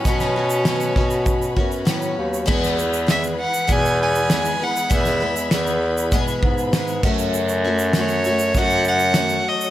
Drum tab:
CC |----------------|x---------------|--------------x-|----------------|
SH |xx-xxx-xxx-xxx-x|-xxxxx-xxx-xxx-x|xx-xxx-xxx-xxx-x|xx-xxxxxxxxxxx-x|
SD |-o--o-------o---|-o--o-------o---|-o--o-------o---|----o-------o---|
BD |o-----o-o-o-----|o-------o-------|o-------o-o---o-|--------o-------|